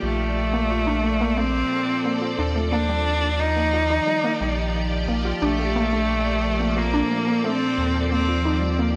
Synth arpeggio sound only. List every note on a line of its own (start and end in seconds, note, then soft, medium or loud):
0.53 0.67 A#3 medium
0.70 0.78 F4 medium
0.87 1.01 D4 loud
1.04 1.18 A3 medium
1.21 1.34 A#3 loud
1.38 1.46 A3 loud
2.05 2.19 A#3 medium
2.22 2.30 F4 medium
2.39 2.52 D4 loud
2.55 2.69 A3 medium
2.72 2.86 A#3 loud
2.89 2.97 G3 loud
3.57 3.70 A#3 medium
3.73 3.82 F4 medium
3.90 4.04 D#4 loud
4.07 4.21 G3 medium
4.24 4.38 A#3 loud
4.41 4.49 G3 loud
5.08 5.22 A#3 medium
5.25 5.33 F4 medium
5.42 5.56 D4 loud
5.59 5.73 A3 medium
5.76 5.90 A#3 loud
5.93 6.01 A3 loud
6.60 6.74 A#3 medium
6.77 6.85 F4 medium
6.94 7.07 D4 loud
7.11 7.24 A3 medium
7.27 7.41 A#3 loud
7.44 7.53 A3 loud
8.12 8.25 A#3 medium
8.29 8.37 F4 medium
8.45 8.59 D#4 loud
8.62 8.76 G3 medium
8.79 8.93 A#3 loud